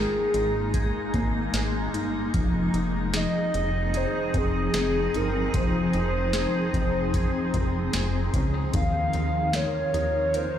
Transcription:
Already playing: G#3 A#3 D#4 G#4
0.34 G#1 D#4, closed hi-hat
0.74 G#4, kick, closed hi-hat
1.14 G#1 A#3, kick, closed hi-hat
1.54 G#1 G#4, snare, closed hi-hat
1.94 G1 D#4, closed hi-hat
2.33 F1 F3 C4 G#4, kick, closed hi-hat
2.74 F1 D#4, closed hi-hat
3.14 G#4 D#5, snare, closed hi-hat
3.54 F1 D#4, closed hi-hat
3.94 G#4 C5, closed hi-hat
4.34 F1 C4 G#4, kick, closed hi-hat
4.74 F1 G#4, snare, closed hi-hat
5.14 G1 D#4 A#4, closed hi-hat
5.54 F1 F3 C5, kick, closed hi-hat
5.93 F1 D#4, closed hi-hat
6.33 G#4, snare, closed hi-hat
6.73 F1 D#4, kick, closed hi-hat
7.14 G#4, kick, closed hi-hat
7.54 F1 C4, kick, closed hi-hat
7.93 F1 G#4, snare, closed hi-hat
8.33 C#2 C#4, kick, closed hi-hat
8.54 D#4
8.73 D#2 D#3 D#4 F4 A#4 F5, kick, closed hi-hat
9.13 D#2 D#4, closed hi-hat
9.53 A#4 C#5, snare, closed hi-hat
9.94 D#2 D#4, closed hi-hat
10.34 A#4 C5, closed hi-hat

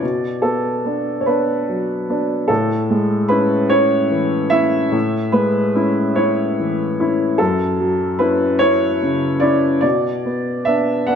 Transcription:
Already playing: D5
0.02 B2
0.42 B3 A4
0.85 B3 D4
1.21 C#5
1.26 B3 D4 B4
1.69 F#3
2.09 B3 D4
2.48 A2 A4
2.90 G#3
3.28 C#4 E4 B4
3.70 C#4 E4 C#5
4.11 E3
4.50 C#4 E4 E5
4.92 A2
5.32 G#3 B4
5.75 C#4 E4
6.16 C#4 E4 C#5
6.60 E3
7.00 C#4 E4
7.38 F#2 A4
7.80 F#3
8.19 C#4 E4 B4
8.59 C#4 E4 C#5
9.02 C#3
9.40 C#4 E4 D5
9.81 B2 D5
10.25 B3
10.65 B3 D4 E5
11.07 B3 D4 F#5

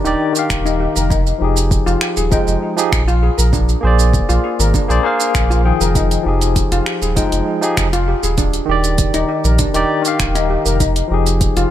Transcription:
0.04 D#1 D#3 D#4 G4 D5, shaker
0.33 D#3 G4, shaker
0.39 F5
0.50 D#1, finger snap, kick, shaker
0.65 D#4, shaker
0.80 G4
0.96 F1 A#4, shaker
1.10 D#4, kick, shaker
1.27 shaker
1.38 F1 F3 D#4 G4
1.44 G#4
1.57 shaker
1.71 kick, shaker
1.86 F1 F4, shaker
2.01 G4, finger snap
2.17 D#1 G#4, shaker
2.31 F3 G#3 D#4 G5, kick, shaker
2.48 F1, shaker
2.76 F3 D#4 G4 G#4, shaker
2.92 A#1, finger snap, kick, shaker
3.08 F4, shaker
3.23 G#4
3.38 A#1 A#4, shaker
3.53 D4, kick, shaker
3.69 shaker
3.81 A#1 A#3 G#4 C5
3.87 D5
3.99 shaker
4.14 kick, shaker
4.29 A#1 F4, shaker
4.44 G#4
4.59 G#1 A#4, shaker
4.74 D4, kick, shaker
4.88 A#1 A#3 G#4 C5 D5, shaker
5.03 A#3 G#4 C5 F5
5.20 shaker
5.35 A#1, finger snap, kick, shaker
5.50 F4, shaker
5.64 D#3 F3 G#4 G5
5.81 F1 A#4, shaker
5.95 D#4, kick, closed hi-hat, shaker
6.11 closed hi-hat, shaker
6.23 F1 F3 D#4 G4
6.28 G#4
6.41 closed hi-hat, shaker
6.56 kick, closed hi-hat, shaker
6.72 F1 F4, closed hi-hat, shaker
6.86 G4, finger snap
7.02 D#1 G#4, shaker
7.15 F3 G#3 D#4 G5, kick, closed hi-hat, shaker
7.32 F1, closed hi-hat, shaker
7.61 F3 D#4 G4 G#4, shaker
7.77 F1, finger snap, kick, closed hi-hat, shaker
7.93 F4, closed hi-hat, shaker
8.08 G4
8.23 D#1 G#4, shaker
8.38 D4, kick, closed hi-hat, shaker
8.54 closed hi-hat, shaker
8.66 D#1 D#3 G4
8.71 D5
8.84 closed hi-hat, shaker
8.98 kick, closed hi-hat, shaker
9.14 D#1 D#4, closed hi-hat, shaker
9.29 G4
9.44 A#1 A#4, shaker
9.59 D4, kick, closed hi-hat, shaker
9.73 D#1 D#3 D#4 G4 D5, closed hi-hat, shaker
10.02 D#3 G4, closed hi-hat, shaker
10.08 F5
10.20 D#1, finger snap, kick, closed hi-hat, shaker
10.35 D#4, closed hi-hat, shaker
10.50 G4
10.66 F1 A#4, shaker
10.80 D#4, kick, closed hi-hat, shaker
10.96 closed hi-hat, shaker
11.08 F1 F3 D#4
11.12 G4 G#4
11.26 closed hi-hat, shaker
11.41 kick, closed hi-hat, shaker
11.56 F1 F4, closed hi-hat, shaker

